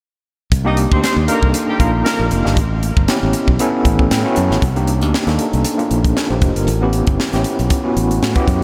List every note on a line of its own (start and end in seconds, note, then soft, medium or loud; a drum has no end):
0.52 0.85 C2 loud
0.52 kick loud
0.52 closed hi-hat medium
0.65 1.12 A#3 medium
0.65 1.12 D4 medium
0.65 1.12 D#4 medium
0.65 0.75 D#4 medium
0.65 1.12 G4 loud
0.65 0.75 D#5 medium
0.77 closed hi-hat medium
0.91 1.01 D2 medium
0.91 1.01 C4 medium
0.91 1.01 C5 medium
0.91 kick medium
1.02 1.14 C4 medium
1.02 1.14 C5 medium
1.02 snare loud
1.02 closed hi-hat medium
1.16 1.27 D#2 medium
1.28 1.67 A#3 medium
1.28 1.49 A#3 medium
1.28 1.67 D4 medium
1.28 1.67 D#4 medium
1.28 1.36 A4 medium
1.28 1.49 A#4 medium
1.28 closed hi-hat medium
1.35 1.70 A#4 medium
1.42 1.52 C2 medium
1.42 kick medium
1.54 closed hi-hat loud
1.69 1.78 G3 medium
1.69 1.78 G4 medium
1.79 2.02 A#1 medium
1.79 1.91 A#3 medium
1.79 2.27 A#3 medium
1.79 2.27 D4 medium
1.79 2.27 D#4 medium
1.79 2.28 F4 loud
1.79 1.91 A#4 medium
1.79 kick medium
1.79 closed hi-hat medium
2.05 2.26 A#3 medium
2.05 2.26 A#4 loud
2.05 snare loud
2.05 closed hi-hat medium
2.20 2.30 A#1 medium
2.31 2.43 F1 medium
2.31 closed hi-hat medium
2.44 2.56 G1 medium
2.44 2.57 A#3 medium
2.44 2.57 D4 medium
2.44 2.57 D#4 medium
2.44 2.57 G4 medium
2.44 snare soft
2.57 2.90 A1 loud
2.57 kick loud
2.57 closed hi-hat medium
2.83 closed hi-hat medium
2.97 3.07 G1 medium
2.97 kick medium
3.08 3.47 B3 medium
3.08 3.47 C#4 medium
3.08 3.47 E4 medium
3.08 3.47 G4 medium
3.08 snare loud
3.08 closed hi-hat loud
3.23 3.33 A1 medium
3.33 closed hi-hat medium
3.47 3.58 B1 medium
3.47 kick medium
3.59 4.07 B3 medium
3.59 4.07 C#4 medium
3.59 4.07 E4 medium
3.59 4.08 A4 loud
3.59 closed hi-hat loud
3.85 4.07 A1 medium
3.85 kick medium
3.85 closed hi-hat medium
3.99 kick medium
4.11 4.23 A2 medium
4.11 4.35 G5 medium
4.11 snare loud
4.11 closed hi-hat medium
4.24 4.61 B3 medium
4.24 4.62 C#4 medium
4.24 4.62 E4 medium
4.24 4.62 F#4 loud
4.36 4.49 F#2 medium
4.36 4.61 A5 medium
4.36 closed hi-hat medium
4.51 4.61 A1 medium
4.51 snare soft
4.62 5.02 C2 medium
4.62 kick medium
4.62 closed hi-hat medium
4.76 5.13 A#3 medium
4.76 5.13 D4 medium
4.76 5.13 D#4 medium
4.76 5.13 G4 medium
4.76 closed hi-hat soft
4.87 closed hi-hat medium
5.01 5.12 D2 medium
5.01 closed hi-hat soft
5.14 snare loud
5.27 5.37 D#2 medium
5.27 5.64 A#3 medium
5.27 5.64 D4 medium
5.27 5.64 D#4 medium
5.27 5.64 A4 medium
5.27 snare soft
5.27 closed hi-hat soft
5.39 closed hi-hat medium
5.53 5.63 C2 medium
5.53 closed hi-hat soft
5.65 closed hi-hat medium
5.78 6.15 A#3 medium
5.78 6.15 D4 medium
5.78 6.15 D#4 medium
5.78 6.15 F4 medium
5.78 closed hi-hat soft
5.91 6.13 A#1 medium
5.91 closed hi-hat medium
6.05 kick medium
6.05 closed hi-hat medium
6.16 6.30 A#4 soft
6.16 6.29 D#5 medium
6.16 snare loud
6.30 6.40 A#1 medium
6.30 6.55 G4 medium
6.30 6.55 C5 medium
6.42 6.54 F1 medium
6.42 kick medium
6.42 closed hi-hat medium
6.56 6.66 G1 medium
6.56 6.81 F4 soft
6.56 6.81 A#4 medium
6.56 closed hi-hat medium
6.67 7.01 A1 loud
6.67 closed hi-hat medium
6.81 7.18 B3 medium
6.81 7.18 C#4 medium
6.81 7.19 E4 medium
6.81 7.19 G4 medium
6.93 closed hi-hat medium
7.07 7.17 G1 medium
7.07 kick medium
7.07 closed hi-hat soft
7.20 snare loud
7.33 7.43 A1 medium
7.33 7.70 B3 medium
7.33 7.70 C#4 medium
7.33 7.70 E4 medium
7.33 7.70 G4 medium
7.33 snare soft
7.33 closed hi-hat soft
7.44 closed hi-hat medium
7.59 7.69 B1 medium
7.59 closed hi-hat soft
7.70 kick loud
7.70 closed hi-hat medium
7.84 8.21 B3 medium
7.84 8.21 C#4 medium
7.84 8.21 E4 medium
7.84 8.21 F#4 medium
7.97 8.18 A1 medium
7.97 closed hi-hat medium
8.11 closed hi-hat medium
8.22 8.34 A2 medium
8.22 snare loud
8.35 8.63 B3 medium
8.35 8.63 C#4 medium
8.35 8.63 E4 medium
8.35 8.63 G4 medium
8.35 kick medium
8.35 closed hi-hat soft
8.48 8.59 F#2 medium
8.48 kick medium
8.48 closed hi-hat medium